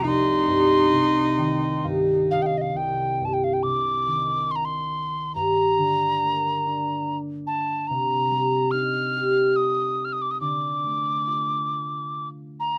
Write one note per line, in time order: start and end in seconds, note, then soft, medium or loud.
0.00 2.73 C2 medium
0.00 2.08 A3 soft
0.00 2.30 D#4 medium
0.08 1.86 C6 medium
0.48 0.97 G2 soft
0.92 1.42 C3 soft
1.38 2.34 D#3 soft
1.38 2.94 G5 medium
1.84 2.34 G2 soft
1.84 3.51 F5 medium
2.30 2.79 C3 soft
2.30 4.09 D#5 medium
2.30 2.44 F5 medium
2.42 2.48 G5 soft
2.46 2.59 F5 medium
2.58 2.63 D#5 soft
2.58 2.78 F5 medium
2.75 5.40 C2 soft
2.75 3.26 G5 medium
3.20 3.68 G2 soft
3.25 3.35 A5 soft
3.33 3.45 G5 soft
3.44 3.55 F5 soft
3.53 3.64 G5 soft
3.63 4.12 C3 soft
3.63 4.53 D6 medium
4.06 5.40 D#3 soft
4.51 4.57 C6 medium
4.56 4.67 A#5 soft
4.65 5.35 C6 medium
5.35 7.93 G2 soft
5.35 7.17 A#5 medium
5.78 7.93 D3 soft
6.22 9.44 A#3 soft
6.66 8.79 D4 soft
7.47 7.89 A5 medium
7.87 10.45 C3 medium
7.87 8.73 A#5 medium
8.31 10.45 G3 soft
8.71 10.47 D#4 soft
8.71 9.58 F6 medium
9.16 11.51 G4 soft
9.56 10.06 D#6 medium
10.05 10.14 F6 medium
10.13 10.23 D#6 medium
10.22 10.32 D6 medium
10.31 10.40 D#6 soft
10.41 12.78 D3 soft
10.41 12.28 D6 medium
10.83 12.78 A3 soft
11.27 12.78 F4 soft
12.60 12.78 A#5 medium